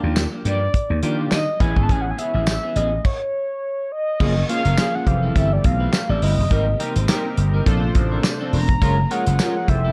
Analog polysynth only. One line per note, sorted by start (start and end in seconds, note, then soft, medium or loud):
0.00 0.27 A#3 medium
0.00 0.27 D4 medium
0.00 0.27 F4 medium
0.00 0.28 G4 loud
1.03 1.37 A#3 medium
1.03 1.37 D4 medium
1.03 1.37 F4 medium
1.03 1.37 G4 medium
1.60 2.53 B3 medium
1.60 2.53 C#4 medium
1.60 2.54 E4 medium
1.60 2.54 G#4 medium
4.20 4.34 A#3 medium
4.20 4.34 C#4 medium
4.20 4.35 F4 medium
4.20 4.35 G#4 medium
4.49 4.63 A#3 medium
4.49 4.63 C#4 medium
4.49 4.63 F4 medium
4.49 4.64 G#4 medium
4.78 5.07 A#3 medium
4.78 5.07 C#4 medium
4.78 5.07 F4 medium
4.78 5.07 G#4 medium
5.06 6.00 E3 medium
5.06 6.00 C4 medium
5.06 6.00 G4 medium
5.06 6.00 A4 medium
6.51 6.65 C4 medium
6.51 6.65 D#4 medium
6.51 6.65 G4 medium
6.51 6.65 A#4 medium
6.79 6.93 C4 medium
6.79 6.94 D#4 medium
6.79 6.94 G4 medium
6.79 6.94 A#4 medium
7.08 7.66 C4 medium
7.08 7.66 D#4 medium
7.08 7.66 G4 medium
7.08 7.67 A#4 medium
7.66 8.59 D4 medium
7.66 8.59 F4 medium
7.66 8.59 A4 medium
7.66 8.60 C5 loud
8.82 8.96 F4 medium
8.82 8.96 G#4 medium
8.82 8.96 A#4 medium
8.82 8.96 C#5 medium
9.10 9.24 F4 medium
9.10 9.25 G#4 medium
9.10 9.25 A#4 medium
9.10 9.25 C#5 medium
9.39 9.68 F4 medium
9.39 9.68 G#4 medium
9.39 9.69 A#4 medium
9.39 9.69 C#5 medium
9.68 9.92 E4 medium
9.68 9.92 G4 medium
9.68 9.92 A4 medium
9.68 9.92 C5 medium